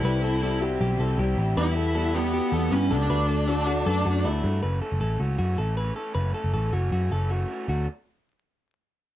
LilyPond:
<<
  \new Staff \with { instrumentName = "String section" } { \time 4/4 \key fis \phrygian \tempo 4 = 157 << { <c'' c'''>1 | <b' b''>1 | <a' a''>1 | r1 |
r1 | r1 | } \\ { <g e''>1~ | <g e''>1 | <fis' d''>1 | r1 |
r1 | r1 | } >> }
  \new Staff \with { instrumentName = "Clean electric guitar" } { \time 4/4 \key fis \phrygian b'8 a'8 a'8 g'8 g'8 a'8 g'4 | b'8 a'8 a'8 g'8 g'8 a'8 b'8 a'8 | b'8 a'8 a'8 fis'8 a'8 fis'8 e'4 | b'8 a'8 a'8 fis'8 fis'8 a'8 b'8 a'8 |
b'8 a'8 a'8 fis'8 fis'8 a'8 fis'4 | fis'8 r2. r8 | }
  \new Staff \with { instrumentName = "Upright piano" } { \time 4/4 \key fis \phrygian <g c' e' a'>8 <g c' e' g'>8 <g c' e' g'>8 <g c' e' fis'>8 <g c' e' g'>8 <g c' e' g'>8 <g c' e' g'>8 <g c' e' g'>8 | <g b e' g'>8 <g b e' a'>8 <g b e' g'>8 <g b e' g'>8 <g b e' fis'>8 <g b e' g'>8 <g b e' fis'>8 <g b e' g'>8 | <a d' fis' a'>8 <a d' fis' a'>8 <a d' fis' a'>8 <a d' fis' a'>8 <a d' fis' b'>8 <a d' fis' a'>8 <a d' fis' a'>8 <a d' fis' a'>8 | r1 |
r1 | r1 | }
  \new Staff \with { instrumentName = "Lead electric guitar" } { \time 4/4 \key fis \phrygian e'4. r2 r8 | e'4. b4. cis'8 d'8~ | d'2. r4 | r1 |
r1 | r1 | }
  \new Staff \with { instrumentName = "Overdriven electric guitar" } { \time 4/4 \key fis \phrygian <c g c' e'>8 <g c' e'>8 <c g c' e'>8 <g c' e'>8 <c g c' e'>8 <g c' e'>8 <c g c' e'>8 <g c' e'>8 | <e g b e'>8 <g b e'>8 <e g b e'>8 <g b e'>8 <e g b e'>8 <g b e'>8 <e g b e'>8 <g b e'>8 | <d fis a d'>8 <fis a d'>8 <d fis a d'>8 <fis a d'>8 <d fis a d'>8 <fis a d'>8 <d fis a d'>8 <fis a d'>8 | <fis, cis e a cis'>8 <e a cis'>8 <cis e a cis'>8 <e a cis'>8 <fis, cis e a cis'>8 <e a cis'>8 <cis e a cis'>8 <e a cis'>8 |
<fis, cis e a cis'>8 <e a cis'>8 <cis e a cis'>8 <e a cis'>8 <fis, cis e a cis'>8 <e a cis'>8 <cis e a cis'>8 <e a cis'>8 | <d fis a d'>8 r2. r8 | }
  \new Staff \with { instrumentName = "Picked electric bass" } { \clef bass \time 4/4 \key fis \phrygian c,2 b,,8 c,8 c,8 a,,8 | e,2~ e,16 r16 e,8 g,8 cis,8 | d,2 fis,8 fis,8 d,8 g,8 | fis,,8 r16 fis,,16 a,,8 cis,8 fis,8 a,,4 r8 |
fis,,8 r16 fis,,16 a,,8 fis,,8 fis,8 fis,,4 r8 | d,8 r2. r8 | }
>>